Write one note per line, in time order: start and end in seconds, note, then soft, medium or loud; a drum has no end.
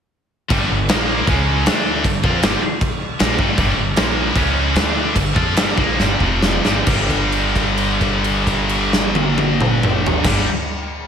0.49 0.68 G1 medium
0.49 0.68 G2 medium
0.49 0.68 D3 medium
0.49 0.69 G3 loud
0.49 kick loud
0.49 crash medium
0.69 0.88 G1 medium
0.69 0.84 G2 medium
0.69 0.85 D3 medium
0.89 1.24 A#1 medium
0.89 1.26 A#2 medium
0.89 1.26 F3 medium
0.89 1.27 A#3 medium
0.89 snare loud
0.89 crash medium
1.26 1.63 C#2 loud
1.26 1.64 C#3 medium
1.26 1.64 G#3 loud
1.26 1.65 C#4 loud
1.26 kick loud
1.26 crash medium
1.64 2.01 D2 medium
1.64 2.02 D3 medium
1.64 2.03 A3 loud
1.64 2.03 D4 loud
1.64 snare loud
1.64 crash medium
2.04 2.22 G1 medium
2.04 2.19 G2 medium
2.04 2.19 D3 medium
2.04 kick medium
2.04 crash medium
2.23 2.41 F2 loud
2.23 2.41 F3 medium
2.23 2.42 C4 loud
2.23 2.42 F4 loud
2.23 kick loud
2.42 2.60 G1 medium
2.42 2.61 G2 medium
2.42 2.61 D3 medium
2.42 2.61 G3 loud
2.42 snare loud
2.42 crash medium
2.62 muted upright bass stroke soft
2.62 muted distorted electric guitar stroke medium
2.81 kick loud
2.81 crash medium
3.19 3.37 A#1 medium
3.19 3.38 A#2 loud
3.19 3.38 F3 loud
3.19 3.39 A#3 loud
3.19 snare loud
3.19 crash soft
3.38 3.56 G1 medium
3.38 3.57 G2 medium
3.38 3.57 D3 medium
3.38 3.58 G3 loud
3.38 kick loud
3.58 3.76 G1 medium
3.58 3.76 G2 medium
3.58 3.77 D3 medium
3.58 3.77 G3 loud
3.58 kick loud
3.58 crash medium
3.78 3.95 G1 medium
3.78 3.93 G2 medium
3.78 3.93 D3 medium
3.96 4.32 A#1 medium
3.96 4.35 A#2 medium
3.96 4.35 F3 loud
3.96 4.36 A#3 medium
3.96 snare loud
3.96 crash medium
4.36 4.72 C#2 loud
4.36 4.74 C#3 loud
4.36 4.74 G#3 loud
4.36 4.74 C#4 medium
4.36 kick loud
4.36 crash medium
4.74 5.12 D2 loud
4.74 5.13 D3 medium
4.74 5.14 A3 medium
4.74 5.14 D4 loud
4.74 snare loud
4.74 crash medium
5.14 5.34 G1 medium
5.14 5.31 G2 medium
5.14 5.31 D3 medium
5.14 kick medium
5.14 crash medium
5.35 5.55 F2 medium
5.35 5.55 F3 loud
5.35 5.56 C4 medium
5.35 5.56 F4 loud
5.35 kick loud
5.55 5.76 G1 medium
5.55 5.76 G2 medium
5.55 5.76 D3 medium
5.55 5.77 G3 loud
5.55 snare loud
5.55 crash medium
5.77 5.97 A#1 medium
5.77 5.98 A#2 medium
5.77 5.98 F3 medium
5.77 5.98 A#3 loud
5.77 kick loud
5.99 6.19 G1 medium
5.99 6.20 G2 medium
5.99 6.20 D3 loud
5.99 6.20 G3 medium
5.99 snare medium
6.20 6.61 F1 medium
6.20 6.63 F2 medium
6.20 6.64 C3 medium
6.20 6.64 F3 loud
6.20 kick medium
6.42 snare medium
6.64 6.86 G1 medium
6.64 6.84 G2 medium
6.64 6.86 D3 medium
6.64 6.87 G3 loud
6.64 snare medium
6.85 10.15 G1 medium
6.85 10.24 G2 medium
6.85 10.26 D3 medium
6.85 kick loud
6.85 crash medium
6.89 10.28 G3 medium
7.10 kick medium
7.10 crash soft
7.32 crash soft
7.56 kick medium
7.56 crash soft
7.78 crash medium
8.01 kick medium
8.01 crash soft
8.24 crash medium
8.47 kick medium
8.47 crash medium
8.69 crash medium
8.93 snare medium
9.15 high tom loud
9.38 high tom loud
9.61 mid tom medium
9.83 mid tom medium
10.07 floor tom medium
10.24 10.43 G1 loud
10.24 10.45 G2 loud
10.24 10.46 D3 loud
10.24 10.47 G3 loud
10.24 kick loud
10.24 snare loud
10.24 crash loud